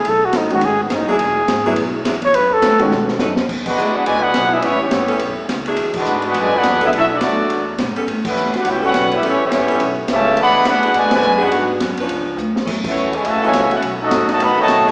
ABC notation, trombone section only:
X:1
M:4/4
L:1/8
Q:"Swing" 1/4=209
K:Bmix
V:1 name="Trombone section"
z8 | z8 | z8 | [K:E] z [=D,G,B,]2 [B,=DF] [B,,D,G,] [B,DF]2 [G,B,E] |
[E,=G,C] [E,G,C]4 z3 | z [=D,G,B,]2 [B,=DF] [B,,D,G,] [B,DF]2 [G,B,E] | E [F,A,=D]4 z3 | z [E,=G,B,]2 F [CE=G] [G,CF]2 [G,CE] |
[E,=G,C] [E,G,C]4 z [C,E,A,]2 | [=D,G,B,]2 [B,=DF]2 [B,,D,G,] [B,,D,G,]2 [B,DF]- | [B,=DF] z6 z | z [E,A,C]2 G, [C,E,A,] [C,E,G,]2 [A,CF] |
z [F,A,D]2 [D,F,A,] [D,F,B,] [D,F,A,]2 G, |]